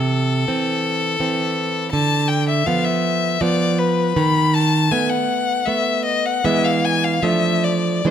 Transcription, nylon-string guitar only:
0, 0, Header, 1, 2, 480
1, 0, Start_track
1, 0, Tempo, 732601
1, 1264, Time_signature, 3, 2, 24, 8
1, 1747, Tempo, 750000
1, 3667, Tempo, 802139
1, 5127, End_track
2, 0, Start_track
2, 0, Title_t, "Nylon-string guitar"
2, 0, Program_c, 0, 24
2, 0, Note_on_c, 0, 48, 54
2, 292, Note_off_c, 0, 48, 0
2, 312, Note_on_c, 0, 52, 37
2, 315, Note_on_c, 0, 60, 45
2, 758, Note_off_c, 0, 52, 0
2, 758, Note_off_c, 0, 60, 0
2, 786, Note_on_c, 0, 52, 41
2, 790, Note_on_c, 0, 60, 43
2, 1240, Note_off_c, 0, 52, 0
2, 1242, Note_off_c, 0, 60, 0
2, 1266, Note_on_c, 0, 50, 57
2, 1733, Note_off_c, 0, 50, 0
2, 1746, Note_on_c, 0, 53, 43
2, 1754, Note_on_c, 0, 59, 48
2, 2198, Note_off_c, 0, 53, 0
2, 2202, Note_off_c, 0, 59, 0
2, 2223, Note_on_c, 0, 53, 43
2, 2232, Note_on_c, 0, 59, 43
2, 2681, Note_off_c, 0, 53, 0
2, 2686, Note_off_c, 0, 59, 0
2, 2705, Note_on_c, 0, 51, 56
2, 3168, Note_off_c, 0, 51, 0
2, 3185, Note_on_c, 0, 57, 43
2, 3190, Note_on_c, 0, 59, 45
2, 3643, Note_off_c, 0, 57, 0
2, 3644, Note_off_c, 0, 59, 0
2, 3671, Note_on_c, 0, 57, 39
2, 3674, Note_on_c, 0, 59, 44
2, 4119, Note_off_c, 0, 57, 0
2, 4120, Note_off_c, 0, 59, 0
2, 4133, Note_on_c, 0, 52, 52
2, 4133, Note_on_c, 0, 56, 41
2, 4136, Note_on_c, 0, 59, 43
2, 4585, Note_off_c, 0, 56, 0
2, 4586, Note_off_c, 0, 59, 0
2, 4596, Note_off_c, 0, 52, 0
2, 4601, Note_on_c, 0, 53, 50
2, 4605, Note_on_c, 0, 57, 36
2, 4609, Note_on_c, 0, 62, 38
2, 5078, Note_off_c, 0, 57, 0
2, 5080, Note_off_c, 0, 62, 0
2, 5086, Note_off_c, 0, 53, 0
2, 5093, Note_on_c, 0, 52, 50
2, 5097, Note_on_c, 0, 56, 37
2, 5101, Note_on_c, 0, 62, 36
2, 5127, Note_off_c, 0, 52, 0
2, 5127, Note_off_c, 0, 56, 0
2, 5127, Note_off_c, 0, 62, 0
2, 5127, End_track
0, 0, End_of_file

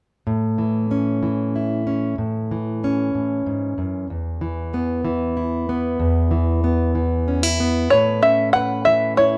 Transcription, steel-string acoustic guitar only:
0, 0, Header, 1, 2, 480
1, 0, Start_track
1, 0, Key_signature, 3, "major"
1, 0, Tempo, 636943
1, 206, Time_signature, 6, 3, 24, 8
1, 7067, End_track
2, 0, Start_track
2, 0, Title_t, "Steel-string acoustic guitar"
2, 0, Program_c, 0, 25
2, 201, Note_on_c, 0, 45, 51
2, 439, Note_on_c, 0, 52, 42
2, 687, Note_on_c, 0, 61, 34
2, 921, Note_off_c, 0, 52, 0
2, 924, Note_on_c, 0, 52, 40
2, 1173, Note_on_c, 0, 64, 37
2, 1399, Note_off_c, 0, 61, 0
2, 1408, Note_on_c, 0, 61, 36
2, 1616, Note_off_c, 0, 45, 0
2, 1619, Note_off_c, 0, 61, 0
2, 1645, Note_on_c, 0, 45, 49
2, 1891, Note_off_c, 0, 52, 0
2, 1894, Note_on_c, 0, 52, 43
2, 2142, Note_on_c, 0, 61, 37
2, 2362, Note_off_c, 0, 45, 0
2, 2372, Note_on_c, 0, 45, 42
2, 2607, Note_off_c, 0, 45, 0
2, 2610, Note_on_c, 0, 44, 45
2, 2845, Note_off_c, 0, 44, 0
2, 2848, Note_on_c, 0, 42, 44
2, 2870, Note_off_c, 0, 64, 0
2, 3066, Note_off_c, 0, 61, 0
2, 3088, Note_off_c, 0, 42, 0
2, 3092, Note_on_c, 0, 40, 50
2, 3323, Note_off_c, 0, 52, 0
2, 3326, Note_on_c, 0, 52, 46
2, 3572, Note_on_c, 0, 59, 36
2, 3799, Note_off_c, 0, 52, 0
2, 3802, Note_on_c, 0, 52, 46
2, 4046, Note_on_c, 0, 64, 41
2, 4286, Note_off_c, 0, 59, 0
2, 4289, Note_on_c, 0, 59, 40
2, 4509, Note_off_c, 0, 40, 0
2, 4518, Note_on_c, 0, 40, 57
2, 4746, Note_off_c, 0, 52, 0
2, 4755, Note_on_c, 0, 52, 47
2, 5000, Note_off_c, 0, 59, 0
2, 5003, Note_on_c, 0, 59, 41
2, 5229, Note_off_c, 0, 52, 0
2, 5238, Note_on_c, 0, 52, 42
2, 5482, Note_off_c, 0, 64, 0
2, 5485, Note_on_c, 0, 61, 43
2, 5600, Note_off_c, 0, 61, 0
2, 5600, Note_on_c, 0, 64, 36
2, 5720, Note_off_c, 0, 59, 0
2, 5729, Note_on_c, 0, 59, 42
2, 5939, Note_off_c, 0, 59, 0
2, 5961, Note_off_c, 0, 40, 0
2, 5963, Note_off_c, 0, 64, 0
2, 5967, Note_on_c, 0, 45, 50
2, 5973, Note_on_c, 0, 71, 46
2, 6199, Note_on_c, 0, 61, 40
2, 6442, Note_off_c, 0, 71, 0
2, 6445, Note_on_c, 0, 71, 38
2, 6673, Note_off_c, 0, 52, 0
2, 6682, Note_on_c, 0, 52, 42
2, 6923, Note_on_c, 0, 64, 41
2, 7067, Note_off_c, 0, 45, 0
2, 7067, Note_off_c, 0, 52, 0
2, 7067, Note_off_c, 0, 61, 0
2, 7067, Note_off_c, 0, 64, 0
2, 7067, Note_off_c, 0, 71, 0
2, 7067, End_track
0, 0, End_of_file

